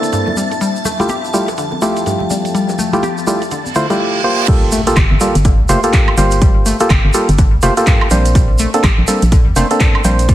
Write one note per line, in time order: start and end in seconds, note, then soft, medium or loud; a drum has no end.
0.00 0.36 A#3 medium
0.00 0.37 A#3 medium
0.00 0.36 C4 medium
0.00 0.36 D4 medium
0.00 1.26 D4 medium
0.00 0.36 E4 medium
0.00 0.36 A4 loud
0.00 2.02 C5 medium
0.00 4.00 E5 medium
0.00 1.86 A5 medium
0.00 4.00 A5 medium
0.00 closed hi-hat soft
0.00 shaker soft
0.13 0.22 G2 medium
0.13 closed hi-hat medium
0.13 shaker soft
0.27 high bongo medium
0.27 low conga medium
0.36 4.00 F3 medium
0.36 0.40 G3 medium
0.36 closed hi-hat soft
0.36 high conga medium
0.36 shaker medium
0.51 closed hi-hat soft
0.51 high bongo medium
0.51 shaker soft
0.61 0.67 G3 medium
0.61 closed hi-hat medium
0.61 shaker soft
0.76 4.00 A4 medium
0.76 shaker soft
0.85 0.94 A3 medium
0.85 high bongo medium
0.85 low conga medium
0.85 shaker medium
0.99 1.10 A3 medium
0.99 1.10 E4 medium
0.99 1.10 F4 medium
0.99 1.10 G4 loud
0.99 closed hi-hat medium
0.99 low conga medium
0.99 shaker soft
1.09 1.15 G4 loud
1.09 closed hi-hat medium
1.09 high bongo medium
1.09 high conga medium
1.09 shaker soft
1.17 4.00 G5 medium
1.24 shaker soft
1.34 1.37 G3 medium
1.34 1.49 A3 medium
1.34 1.49 E4 medium
1.34 1.49 F4 medium
1.34 1.49 G4 medium
1.34 shaker medium
1.48 closed hi-hat medium
1.48 high bongo medium
1.48 shaker soft
1.57 1.64 D3 medium
1.57 closed hi-hat medium
1.57 shaker soft
1.72 high bongo medium
1.72 high conga medium
1.82 2.90 A3 medium
1.82 1.91 A3 loud
1.82 2.90 E4 medium
1.82 2.90 F4 medium
1.82 2.90 G4 loud
1.82 closed hi-hat medium
1.82 shaker medium
1.97 closed hi-hat medium
1.97 shaker soft
2.06 2.15 G2 medium
2.06 closed hi-hat medium
2.06 high bongo medium
2.06 shaker soft
2.20 low conga medium
2.30 2.34 G3 medium
2.30 closed hi-hat soft
2.30 high bongo medium
2.30 high conga medium
2.30 shaker medium
2.45 closed hi-hat soft
2.45 shaker soft
2.55 2.60 G3 medium
2.55 closed hi-hat medium
2.55 shaker soft
2.69 high bongo medium
2.69 shaker soft
2.78 2.88 A3 loud
2.78 low conga medium
2.78 shaker medium
2.93 3.04 A3 medium
2.93 3.04 E4 medium
2.93 3.04 F4 medium
2.93 3.04 G4 loud
2.93 closed hi-hat medium
2.93 high bongo medium
2.93 low conga medium
2.93 shaker soft
3.03 3.09 G4 loud
3.03 closed hi-hat medium
3.03 high conga medium
3.03 shaker soft
3.18 shaker soft
3.27 3.31 G3 medium
3.27 3.42 A3 medium
3.27 3.42 E4 medium
3.27 3.42 F4 medium
3.27 3.42 G4 medium
3.27 high bongo medium
3.27 shaker medium
3.42 closed hi-hat medium
3.42 shaker soft
3.51 3.57 D3 medium
3.51 closed hi-hat medium
3.51 reverse cymbal medium
3.51 high bongo medium
3.51 shaker soft
3.66 high conga medium
3.66 shaker soft
3.75 3.84 D3 medium
3.75 3.87 A3 medium
3.75 3.87 E4 medium
3.75 3.87 F4 medium
3.75 3.87 C5 loud
3.75 closed hi-hat medium
3.75 shaker medium
3.90 3.92 G3 medium
3.90 4.22 A3 medium
3.90 4.22 E4 medium
3.90 4.22 F4 medium
3.90 4.22 G4 loud
3.90 closed hi-hat medium
3.90 high bongo medium
3.90 shaker soft
4.24 4.47 A#3 medium
4.24 4.47 F4 medium
4.24 4.47 G4 medium
4.24 4.72 C5 medium
4.48 4.54 G3 medium
4.48 4.81 A#3 loud
4.48 4.81 F4 medium
4.48 4.81 G4 loud
4.48 4.81 A4 loud
4.48 kick loud
4.48 closed hi-hat medium
4.48 crash loud
4.48 impact medium
4.48 shaker soft
4.72 4.81 A3 loud
4.72 open hi-hat loud
4.72 shaker loud
4.87 4.97 A#3 loud
4.87 4.97 F4 medium
4.87 4.97 G4 medium
4.87 4.97 A4 loud
4.87 closed hi-hat medium
4.87 shaker medium
4.96 5.05 G1 loud
4.96 5.02 G4 loud
4.96 kick loud
4.96 clap loud
4.96 closed hi-hat medium
4.96 high woodblock medium
4.96 shaker soft
5.11 5.18 G1 medium
5.21 5.24 G3 medium
5.21 5.36 A#3 medium
5.21 5.36 F4 medium
5.21 5.36 G4 medium
5.21 5.36 A4 medium
5.21 open hi-hat loud
5.21 shaker medium
5.35 5.61 G1 loud
5.35 closed hi-hat medium
5.35 shaker medium
5.44 5.51 D3 medium
5.44 kick loud
5.44 closed hi-hat medium
5.44 shaker soft
5.59 5.66 D2 medium
5.69 5.77 F1 medium
5.69 5.78 A3 loud
5.69 5.80 A#3 medium
5.69 5.80 F4 medium
5.69 5.80 G4 medium
5.69 5.80 C5 loud
5.69 open hi-hat loud
5.69 shaker medium
5.83 6.15 A#3 medium
5.83 6.15 F4 medium
5.83 6.15 G4 medium
5.83 6.15 A4 loud
5.83 closed hi-hat medium
5.83 shaker medium
5.93 6.02 G2 medium
5.93 kick loud
5.93 clap loud
5.93 closed hi-hat medium
5.93 shaker soft
6.08 high woodblock medium
6.17 6.73 G1 medium
6.17 6.21 G3 medium
6.17 6.77 A#3 medium
6.17 6.77 F4 medium
6.17 6.77 G4 medium
6.17 6.77 C5 medium
6.17 open hi-hat loud
6.17 shaker medium
6.31 closed hi-hat medium
6.31 shaker medium
6.42 6.48 G3 medium
6.42 kick loud
6.42 closed hi-hat medium
6.42 shaker soft
6.66 6.75 A3 loud
6.66 open hi-hat loud
6.66 shaker loud
6.80 6.91 A#3 loud
6.80 6.91 F4 medium
6.80 6.91 G4 medium
6.80 6.91 A4 loud
6.80 closed hi-hat medium
6.80 shaker medium
6.90 6.98 G1 loud
6.90 6.96 G4 loud
6.90 kick loud
6.90 clap loud
6.90 closed hi-hat medium
6.90 high woodblock medium
6.90 shaker soft
7.05 7.11 G1 medium
7.14 7.18 G3 medium
7.14 7.29 A#3 medium
7.14 7.29 F4 medium
7.14 7.29 G4 medium
7.14 7.29 A4 medium
7.14 open hi-hat loud
7.14 shaker loud
7.29 7.55 G1 loud
7.29 closed hi-hat medium
7.29 shaker soft
7.38 7.44 D3 medium
7.38 kick loud
7.38 closed hi-hat medium
7.38 shaker soft
7.53 7.59 D2 medium
7.62 7.71 F1 medium
7.62 7.72 A3 loud
7.62 7.74 A#3 medium
7.62 7.74 F4 medium
7.62 7.74 G4 medium
7.62 7.74 C5 loud
7.62 open hi-hat loud
7.62 shaker medium
7.77 8.09 A#3 medium
7.77 8.09 F4 medium
7.77 8.09 G4 medium
7.77 8.09 A4 loud
7.77 closed hi-hat medium
7.77 shaker medium
7.87 7.96 G2 medium
7.87 kick loud
7.87 clap loud
7.87 closed hi-hat medium
7.87 shaker soft
8.01 high woodblock medium
8.11 8.66 A#1 medium
8.11 8.15 G3 medium
8.11 8.70 A#3 medium
8.11 8.70 C4 medium
8.11 8.71 D4 medium
8.11 8.71 C5 medium
8.11 open hi-hat loud
8.11 shaker loud
8.26 closed hi-hat medium
8.26 shaker medium
8.35 8.41 G3 medium
8.35 kick loud
8.35 closed hi-hat medium
8.35 shaker soft
8.59 8.68 A3 loud
8.59 open hi-hat loud
8.59 shaker loud
8.74 8.84 A#3 loud
8.74 8.84 C4 medium
8.74 8.85 D4 medium
8.74 8.85 A4 loud
8.74 closed hi-hat medium
8.74 shaker soft
8.84 8.92 A#1 loud
8.84 8.90 G4 loud
8.84 kick loud
8.84 clap loud
8.84 closed hi-hat medium
8.84 high woodblock medium
8.84 shaker soft
8.98 9.05 A#1 medium
9.08 9.11 G3 medium
9.08 9.23 A#3 medium
9.08 9.23 C4 medium
9.08 9.23 D4 medium
9.08 9.23 A4 medium
9.08 open hi-hat loud
9.08 shaker medium
9.22 9.48 A#1 loud
9.22 closed hi-hat medium
9.22 shaker medium
9.32 9.38 D3 medium
9.32 kick loud
9.32 closed hi-hat medium
9.32 shaker soft
9.47 9.53 F2 medium
9.56 9.64 F1 medium
9.56 9.65 A3 loud
9.56 9.67 A#3 medium
9.56 9.67 C4 medium
9.56 9.67 D4 medium
9.56 9.67 C5 loud
9.56 open hi-hat loud
9.56 shaker medium
9.71 10.02 A#3 medium
9.71 10.02 C4 medium
9.71 10.02 D4 medium
9.71 10.02 A4 loud
9.71 closed hi-hat medium
9.71 shaker medium
9.80 9.89 G2 medium
9.80 kick loud
9.80 clap loud
9.80 closed hi-hat medium
9.80 shaker soft
9.95 high woodblock medium
10.04 10.35 A#1 medium
10.04 10.08 G3 medium
10.04 10.35 A#3 medium
10.04 10.35 C4 medium
10.04 10.35 D4 medium
10.04 10.35 C5 medium
10.04 open hi-hat loud
10.04 shaker loud
10.19 closed hi-hat medium
10.19 shaker medium
10.29 10.35 G3 medium
10.29 kick loud
10.29 closed hi-hat medium
10.29 shaker soft